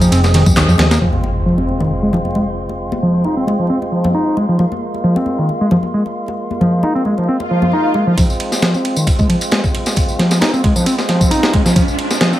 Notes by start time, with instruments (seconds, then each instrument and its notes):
Already playing: tonewheel organ G#3 C4 G#4
0.01 fingered electric bass F1, picked electric bass F3, tambourine, muted conga
0.11 fingered electric bass F1, picked electric bass C4, ride, tambourine
0.24 snare, tambourine, muted conga
0.34 picked electric bass D#3, snare, ride
0.46 fingered electric bass F2, kick, tambourine, high conga, low conga
0.55 fingered electric bass D#2, picked electric bass D#3, snare, clap, ride, tambourine, muted conga
0.68 fingered electric bass F2, picked electric bass F3, tambourine
0.78 fingered electric bass D#2, picked electric bass F3, snare, ride, muted conga
0.91 picked electric bass A#3, snare, ride, tambourine
1.01 fingered electric bass F1, picked electric bass F3, tonewheel organ G#3 C4 F4, impact, muted conga
1.13 high conga
1.24 muted conga
1.46 picked electric bass F3
1.58 picked electric bass C4, muted conga
1.69 high conga
1.80 picked electric bass D#3, muted conga
2.03 picked electric bass G#3
2.13 picked electric bass F3, muted conga, low conga
2.25 high conga
2.35 picked electric bass G#3, muted conga
2.69 muted conga
2.92 muted conga, high conga
3.03 picked electric bass F3
3.24 picked electric bass D#4, muted conga
3.37 picked electric bass C4
3.47 picked electric bass G#3, muted conga, high conga
3.59 picked electric bass F3
3.70 picked electric bass C4
3.82 muted conga
3.92 picked electric bass F3
4.04 muted conga, high conga, low conga
4.14 picked electric bass D#4
4.37 picked electric bass G#3, muted conga
4.49 picked electric bass F3
4.59 picked electric bass F3, tonewheel organ A#3, muted conga
4.72 high conga
4.94 muted conga
5.04 picked electric bass F3
5.16 picked electric bass C4, muted conga
5.26 high conga
5.38 picked electric bass D#3
5.49 muted conga
5.61 picked electric bass G#3
5.71 picked electric bass F3, muted conga, low conga
5.83 high conga
5.94 picked electric bass G#3
6.06 muted conga
6.28 muted conga
6.51 high conga
6.61 picked electric bass F3, muted conga, low conga
6.83 picked electric bass D#4, muted conga
6.95 picked electric bass C4
7.05 picked electric bass G#3, high conga
7.18 picked electric bass F3, muted conga
7.28 picked electric bass C4, swell
7.40 muted conga
7.51 picked electric bass F3
7.62 high conga, low conga
7.72 picked electric bass D#4, muted conga
7.94 picked electric bass G#3, muted conga
8.07 picked electric bass F3
8.17 picked electric bass F3, tonewheel organ G#3 C4 F4, kick, ride, tambourine, riser
8.30 tambourine
8.40 ride
8.52 snare, tambourine
8.62 picked electric bass F3, snare, ride
8.74 picked electric bass C4, tambourine
8.85 ride
8.96 picked electric bass D#3, tambourine
9.07 kick, ride, tambourine
9.19 picked electric bass G#3, kick, tambourine
9.29 picked electric bass F3, ride
9.41 ride, tambourine
9.51 picked electric bass G#3, snare, ride, tambourine
9.64 kick, tambourine
9.75 ride
9.86 snare, tambourine
9.96 kick, ride, tambourine
10.08 tambourine
10.19 picked electric bass F3, snare, ride
10.31 snare, tambourine
10.41 picked electric bass D#4, snare, ride, tambourine
10.53 picked electric bass C4, tambourine
10.64 picked electric bass G#3, kick, ride
10.76 picked electric bass F3, tambourine
10.86 picked electric bass C4, ride, tambourine
10.98 snare, tambourine
11.09 picked electric bass F3, snare, ride
11.21 kick, tambourine
11.31 picked electric bass D#4, ride, tambourine
11.43 snare, tambourine
11.53 picked electric bass G#3, kick, ride
11.65 picked electric bass F3, snare, tambourine
11.76 picked electric bass F3, kick, ride, tambourine
11.88 tambourine
11.99 ride
12.11 snare, tambourine
12.21 picked electric bass F3, snare, ride, tambourine
12.32 picked electric bass C4, tambourine